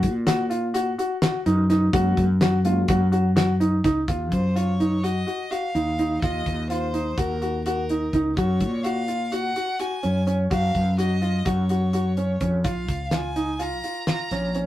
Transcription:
Already playing: F#4
0.03 A#2, kick, closed hi-hat
0.27 F#4, snare, closed hi-hat
0.50 F4, closed hi-hat
0.74 F#4, closed hi-hat
0.98 F#4, closed hi-hat
1.22 F#4, snare, closed hi-hat
1.46 F#2 D#4, closed hi-hat
1.70 D#4, snare, closed hi-hat
1.92 F#2 G#3 A#3 C#4 F#4, kick, closed hi-hat
2.17 F#2, kick, closed hi-hat
2.41 F#4, snare, closed hi-hat
2.64 G#3 A#3 C#4 F4 F#4, closed hi-hat
2.88 F#2 F#4, kick, closed hi-hat
3.12 F#4, closed hi-hat
3.36 F#4, snare, closed hi-hat
3.60 D#4, closed hi-hat
3.84 C#2 D#4, kick, snare, closed hi-hat
4.08 D#2 F4, kick, closed hi-hat
4.32 F#2 C5, kick, closed hi-hat
4.55 F4 C#5, closed hi-hat
4.80 D#4, closed hi-hat
5.03 F#4 D#5, closed hi-hat
5.27 F#4, closed hi-hat
5.51 F#4 F5, closed hi-hat
5.75 D#2 D#4, closed hi-hat
5.99 D#4, closed hi-hat
6.22 D#2 F4 D#5, kick, closed hi-hat
6.46 D#2, kick, closed hi-hat
6.70 F4 C5, closed hi-hat
6.93 D#4, closed hi-hat
7.18 D#2 F#4 A#4, kick, closed hi-hat
7.42 F#4, closed hi-hat
7.64 F#4 A#4, closed hi-hat
7.89 D#4, closed hi-hat
8.13 C#2 D#4, kick, closed hi-hat
8.36 F#2 F#4 C#5, kick, closed hi-hat
8.60 A#2, kick, closed hi-hat
8.83 F#4 F5, closed hi-hat
9.08 F4, closed hi-hat
9.32 F#4 F#5, closed hi-hat
9.56 F#4, closed hi-hat
9.79 F#4 G#5, closed hi-hat
10.03 F#2 C#4, closed hi-hat
10.27 C#4, closed hi-hat
10.51 F#2 F#4 F5, kick, closed hi-hat
10.75 F#2, kick, closed hi-hat
10.98 F#4 D#5, closed hi-hat
11.22 F4, closed hi-hat
11.45 F#2 F#4 C#5, kick, closed hi-hat
11.69 F#4, closed hi-hat
11.93 F#4, closed hi-hat
12.17 C#4, closed hi-hat
12.41 F2 C#4, kick, closed hi-hat
12.64 A#1 F4 F5, kick, closed hi-hat
12.88 C#2, kick, closed hi-hat
13.11 F4 G#5, snare, closed hi-hat
13.36 D#4, closed hi-hat
13.59 F4 A#5, closed hi-hat
13.84 F4, closed hi-hat
14.07 F4 A#5, snare, closed hi-hat
14.31 A#1 C#4, snare, closed hi-hat
14.55 C#4, closed hi-hat

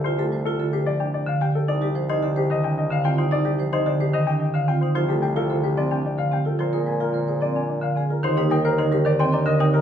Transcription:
Already playing: C2
0.04 F4 C5
0.18 A3 G4 A4
0.32 G3 C5
0.45 F4 A4
0.59 D3 A4
0.73 G4 C5
0.86 F3 D5
1.00 D4 G5
1.14 D5
1.27 D3 F5
1.41 G4 G5
1.55 A4
1.68 C2 D#4 D5
1.81 G3 G4
1.95 F3 C5
2.09 D#4 C5 D#5
2.23 D3 G4 D5
2.36 G4 C5
2.50 D#3 D#5
2.64 D4 G5
2.78 D#5
2.91 D3 F5
3.04 C4 F4 G5
3.18 D#4 C5
3.31 D#4 D5
3.45 G3 G4
3.58 F3 C5
3.73 D#4 C5 D#5
3.86 D3 G4 D5
4.00 G4 C5
4.14 D#3 D#5
4.27 D4 G5
4.40 D#5
4.54 D3 F5
4.68 C4 F4 G5
4.81 D#4 C5
4.95 C2 F3 F4 C5
5.09 A3 G4 A4
5.22 G3 C5 G5
5.36 F4 A4 F5
5.50 D3 A4 C5
5.63 G4 C5
5.77 F3 C4 D5
5.91 D4 G5
6.06 D5
6.18 D3 F5
6.31 C4 G4 G5
6.45 F4 A4
6.59 A#2 F3 F4 C5
6.73 A#3 G#4 A#4
6.86 G#3 C5 G#5
7.00 F4 A#4 F5
7.13 D3 A#4 C5
7.28 G#4 C5
7.40 F3 C4 D5
7.55 D4 G#5
7.69 D5
7.82 D3 F5
7.96 C4 G#4 G#5
8.10 F4 A#4
8.23 D#2 D#3 D#4 C5 C6
8.37 A#3 D#4 G4
8.50 G3 A#4 G5 D#6
8.65 A#4 C5
8.78 D3 D#4 C5 D#5
8.92 G3 G4 A#4
9.05 D#3 C5 D5
9.19 C4 G5 C6
9.32 C4 D4 D5 A#5
9.46 D3 A#4 D#5
9.59 C4 D#4 G5 D#6
9.74 G4 A#4

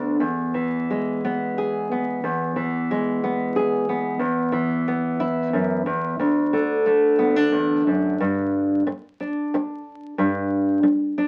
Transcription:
Already playing: D2 D3 B3 D4
0.20 E2
0.54 E3
0.90 G#3
1.25 B3
1.58 G#4
1.92 B3
2.24 E2
2.56 E3
2.91 G#3
3.24 B3
3.56 G#4
3.89 B3
4.19 E2
4.52 E3
4.88 B3
5.20 E4
5.53 F#2
5.86 E2
6.19 D2
6.53 D3
6.86 A3
7.19 B3
7.36 D4
7.52 E2
7.87 F#2
8.20 G2
8.87 muted nylon-string guitar stroke
9.20 D4
9.54 muted nylon-string guitar stroke
10.18 G2
10.83 muted nylon-string guitar stroke
11.18 D4

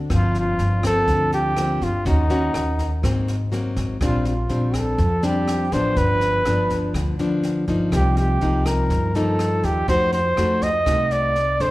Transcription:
0.10 G1 G2 F3 A#3 C4, kick, cross-stick, snare
0.14 F4
0.35 snare
0.39 F4
0.59 G1, snare
0.83 F3 A#3 C4 A4, kick, cross-stick, snare
1.08 D2 D3, kick, snare
1.32 G4, snare
1.56 F3 A#3 C4, cross-stick, snare
1.81 G1 F4, kick, snare
2.05 D#2 D#3 A#3 C#4 D#4 F#4, kick, snare
2.30 A#3 C#4 F#4, snare
2.54 D#2, cross-stick, snare
2.79 kick, snare
3.03 G#1 G#2 F#3 A#3 C4, kick, cross-stick, snare
3.28 snare
3.52 F#3 A#3 C4, snare
3.76 G#1, kick, snare
4.01 A#1 A#2 G3 C4 D4 F4, kick, cross-stick, snare
4.25 F4, snare
4.49 A#1 G3 C4 D4, snare
4.74 A4, kick, cross-stick, snare
4.98 F2 F3, kick, snare
5.23 G3 C4 D4 G4, snare
5.48 cross-stick, snare
5.72 A1 F3 B3 D4 C5, kick, snare
5.96 G1 G2 B4, kick, snare
6.21 snare
6.45 G1 F3 B3 D4, cross-stick, snare
6.70 kick, snare
6.94 D2 D3, kick, cross-stick, snare
7.19 F3 B3 D4, snare
7.43 snare
7.68 G1 F3 A#3 D#4, kick, snare
7.92 C2 C3 G4, kick, cross-stick, snare
8.17 G4, snare
8.41 C2 F3 A#3 D#4, snare
8.66 A#4, kick, cross-stick, snare
8.90 G2, kick, snare
9.15 F3 A#3 D#4 A4, snare
9.39 cross-stick, snare
9.63 D#2 G4, kick, snare
9.88 F2 F3 A3 D#4 F#4 C5, kick, snare
10.12 C5, snare
10.37 F2 A3 D#4 F#4, cross-stick, snare
10.62 D#5, kick, snare
10.86 C2 C3 A3 D#4 F#4, kick, cross-stick, snare
11.11 D5, snare
11.36 snare
11.60 F2 D4 A4 C5, kick, snare

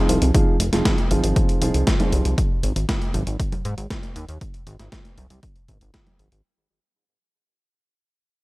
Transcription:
Already playing: F3 C4 D#4 F4 G#4
0.09 C2, closed hi-hat
0.22 C2, closed hi-hat
0.34 F3 C4 D#4 F4 G#4, kick, closed hi-hat
0.60 F1, closed hi-hat
0.73 F1 F3 C4 D#4 F4 G#4, snare, closed hi-hat
0.85 kick, snare, closed hi-hat
0.98 closed hi-hat
1.11 G#1 F3 C4 D#4 F4 G#4, closed hi-hat, high conga
1.24 G#1, closed hi-hat
1.36 kick, closed hi-hat
1.49 closed hi-hat
1.62 C2 F3 C4 D#4 F4 G#4, closed hi-hat
1.74 C2, closed hi-hat
1.87 kick, snare, closed hi-hat
2.00 F3 C4 D#4 F4 G#4, closed hi-hat, high conga
2.12 C2, closed hi-hat
2.25 C2, closed hi-hat
2.38 kick, closed hi-hat
2.63 G#1, closed hi-hat
2.76 G#1, closed hi-hat
2.89 kick, snare, closed hi-hat
3.02 closed hi-hat
3.14 G#1, closed hi-hat, high conga
3.27 G#1, closed hi-hat
3.40 kick, closed hi-hat
3.52 closed hi-hat, high conga
3.65 G#2, closed hi-hat
3.78 G#1, closed hi-hat
3.90 kick, snare, closed hi-hat
4.03 closed hi-hat
4.16 D#2, closed hi-hat
4.29 D#2, closed hi-hat
4.41 kick, closed hi-hat
4.54 closed hi-hat
4.67 G#1, closed hi-hat
4.79 G#1, snare, closed hi-hat
4.92 kick, snare, closed hi-hat
5.05 closed hi-hat
5.18 C2, closed hi-hat, high conga
5.30 C2, closed hi-hat
5.43 kick, closed hi-hat
5.56 closed hi-hat
5.68 G#1, kick, closed hi-hat
5.81 G#1, closed hi-hat
5.94 kick, snare, closed hi-hat
6.07 closed hi-hat, high conga
6.19 G#1, closed hi-hat
6.32 G#1, closed hi-hat

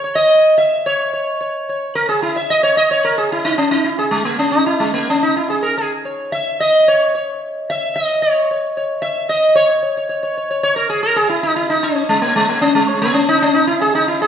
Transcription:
0.04 C#5
0.15 D#5
0.58 E5
0.86 C#5
1.13 C#5
1.41 C#5
1.69 C#5
1.95 A#4
2.09 G#4
2.22 E4
2.36 E5
2.50 D#5
2.63 C#5
2.77 D#5
2.91 C#5
3.05 A#4
3.18 G#4
3.32 E4
3.45 D#4
3.58 C#4
3.71 D#4
3.85 E4
3.99 G#4
4.11 G#3
4.25 A#3
4.39 C#4
4.52 D#4
4.66 E4
4.80 G#3
4.94 A#3
5.10 C#4
5.23 D#4
5.37 E4
5.50 G#4
5.63 A#4
5.78 G#4
6.05 C#5
6.32 E5
6.60 D#5
6.88 C#5
7.15 C#5
7.70 E5
7.96 D#5
8.22 C#5
8.51 C#5
8.77 C#5
9.02 E5
9.29 D#5
9.55 C#5
9.69 C#5
9.83 C#5
9.97 C#5
10.09 C#5
10.23 C#5
10.37 C#5
10.51 C#5
10.63 C#5
10.76 A#4
10.90 G#4
11.03 A#4
11.16 G#4
11.29 E4
11.43 D#4
11.56 E4
11.70 D#4
11.83 C#4
11.95 C#5
12.09 G#3
12.22 A#3
12.36 G#3
12.49 A#3
12.61 C#4
12.75 G#3
12.88 C#5
13.02 A#3
13.14 C#4
13.29 D#4
13.38 C#4 D#4
13.55 D#4
13.67 E4
13.81 G#4
13.95 D#4
14.08 E4
14.22 G#4

